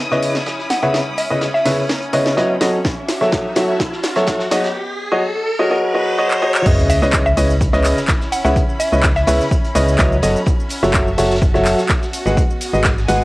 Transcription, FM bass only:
6.66 7.00 C#2 loud
7.02 7.35 C#2 loud
7.37 7.71 C#2 loud
7.73 7.94 C#2 loud
8.45 8.56 C#2 loud
8.93 9.25 C#2 loud
9.28 9.40 C#2 medium
9.75 9.97 C#2 medium
9.99 10.21 C#2 loud
10.23 10.36 F#1 loud
10.83 11.16 F#1 medium
11.18 11.52 F#1 medium
11.54 11.75 F#1 loud
12.26 12.37 G#1 loud
12.73 13.06 G#1 medium
13.08 13.21 G#1 medium

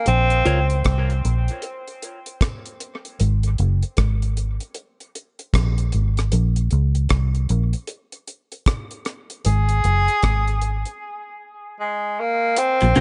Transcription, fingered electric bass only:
0.07 0.44 A#1 loud
0.46 0.82 C#2 medium
0.86 1.22 C2 medium
1.25 1.48 A#1 medium
3.21 3.56 G#1 medium
3.59 3.82 F#1 medium
3.98 4.58 G#1 medium
5.55 5.91 A#1 medium
5.94 6.30 G#1 medium
6.33 6.69 A#1 loud
6.72 7.08 C#2 medium
7.11 7.47 C2 medium
7.50 7.73 A#1 medium
9.46 9.82 G#1 loud
9.85 10.07 F#1 medium
10.24 10.83 G#1 medium
12.83 12.96 A#1 loud
12.97 13.01 C2 medium

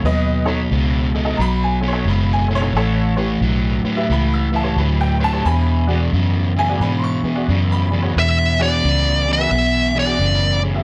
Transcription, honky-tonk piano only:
0.05 0.45 B4 medium
0.05 0.47 D#5 loud
0.45 0.58 D#4 medium
0.45 0.59 A4 medium
0.45 0.59 C#5 medium
1.14 1.21 A4 soft
1.14 1.21 D#5 medium
1.25 1.38 D#4 medium
1.25 1.38 A4 medium
1.25 1.38 D#5 medium
1.37 1.42 A#5 medium
1.41 1.62 B5 loud
1.64 1.85 G#5 medium
1.81 1.88 A4 soft
1.81 1.86 C#5 soft
1.88 1.91 C#5 medium
1.93 2.06 D#4 medium
1.93 2.06 A4 medium
1.93 2.06 C#5 medium
2.09 2.30 B5 medium
2.33 2.53 G#5 medium
2.48 2.55 A4 soft
2.48 2.54 C#5 soft
2.55 2.60 C#5 loud
2.61 2.74 D#4 medium
2.61 2.74 A4 medium
2.61 2.74 C#5 medium
2.77 3.16 A4 loud
2.77 3.15 C#5 loud
3.16 3.29 G4 medium
3.16 3.29 B4 medium
3.16 3.29 C#5 medium
3.84 3.91 B4 soft
3.84 3.91 C#5 soft
3.96 4.09 G4 medium
3.96 4.09 B4 medium
3.96 4.09 E5 medium
4.12 4.33 B5 medium
4.34 4.55 E6 medium
4.52 4.58 B4 soft
4.52 4.59 E5 soft
4.52 4.77 A5 medium
4.63 4.76 G4 medium
4.63 4.77 B4 medium
4.63 4.77 C#5 medium
4.78 5.00 B5 medium
5.01 5.22 G5 medium
5.19 5.26 B4 soft
5.19 5.26 C#5 medium
5.24 5.45 A5 loud
5.33 5.45 G4 medium
5.33 5.45 B4 medium
5.33 5.45 C#5 medium
5.45 5.85 G#5 medium
5.45 5.87 B5 loud
5.87 6.00 F#4 medium
5.87 6.00 G#4 medium
5.87 6.00 D5 medium
6.57 6.63 G#4 soft
6.57 6.63 E5 soft
6.57 6.80 G#5 loud
6.69 6.81 F#4 medium
6.69 6.81 G#4 medium
6.69 6.81 D5 medium
6.81 7.03 B5 medium
6.99 7.06 C6 medium
7.04 7.69 C#6 loud
7.23 7.30 G#4 soft
7.23 7.30 B4 soft
7.35 7.48 F#4 medium
7.35 7.48 G#4 medium
7.35 7.48 D5 medium
7.72 8.07 B5 loud
7.90 7.97 G#4 soft
7.90 7.97 D5 medium
8.02 8.15 F#4 medium
8.02 8.15 G#4 medium
8.02 8.15 C#5 medium
8.59 8.72 F#4 medium
8.59 8.72 G#4 medium
8.59 8.72 D5 medium
9.26 9.33 G#4 soft
9.26 9.33 D5 soft
9.38 9.51 F#4 medium
9.38 9.51 G#4 medium
9.38 9.51 B4 medium
9.94 10.01 G#4 soft
9.94 10.01 D5 soft
10.06 10.19 F#4 medium
10.06 10.19 G#4 medium
10.06 10.19 D5 medium
10.63 10.69 G#4 soft
10.63 10.69 C#5 soft
10.74 10.83 F#4 medium
10.74 10.83 G#4 medium
10.74 10.83 E5 medium

